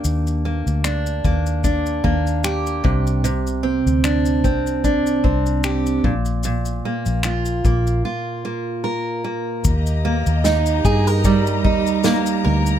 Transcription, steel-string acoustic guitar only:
X:1
M:4/4
L:1/16
Q:"Swing 16ths" 1/4=75
K:Eb
V:1 name="Steel-string acoustic guitar"
[B,DG]2 B,2 D2 B,2 D2 B,2 G2 C,2 | C,2 C2 D2 C2 D2 C2 G2 B,,2 | B,,2 B,2 F2 B,2 F2 B,2 B2 B,2 | z2 B,2 E2 A B G,2 E2 B,2 B2 |]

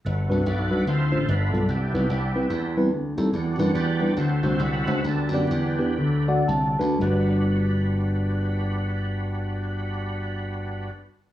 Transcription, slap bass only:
X:1
M:4/4
L:1/8
Q:"Swing" 1/4=134
K:G
V:1 name="Slap bass" clef=bass
G,,, C,, B,,,2 D,, A,,, G,,, B,,, | C,, B,,, C,,2 E,,2 D,, _E,, | E,, F,, E,,2 D,, C,, C,, ^C,, | D,, F,, E,,2 D,,2 C,, D,, |
G,,,8- | G,,,8 |]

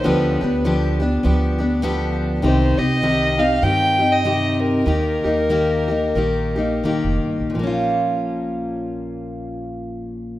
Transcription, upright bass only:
X:1
M:4/4
L:1/16
Q:"Swing" 1/4=95
K:Ebmix
V:1 name="Upright bass" clef=bass
=D,,2 D,,6 D,,8 | C,,2 C,,6 G,,8 | E,,2 E,,6 B,,,4 E,,, F,,, G,,, B,,, | B,,,16 |]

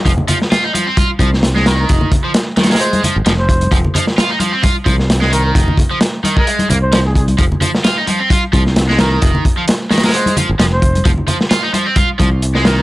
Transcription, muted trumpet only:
X:1
M:4/4
L:1/16
Q:"Swing 16ths" 1/4=131
K:Fm
V:1 name="Muted trumpet"
z12 z2 B B | z6 z B c2 z3 c3 | z12 z2 B B | z6 z B z3 c2 A A z |
z12 z2 B B | z6 z B c2 z3 c3 | z12 z2 B B |]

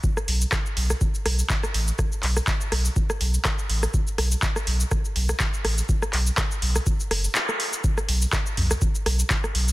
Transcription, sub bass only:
X:1
M:4/4
L:1/8
Q:"Swing 16ths" 1/4=123
K:Clyd
V:1 name="Sub bass" clef=bass
z B,,, z B,,, z B,,, z A,,, | z B,,, z B,,, z B,,, z A,,, | z B,,, z B,,, z B,,, z A,,, | z B,,, z B,,, z F,,, z2 |
z B,,, z B,,, z B,,, z B,,, |]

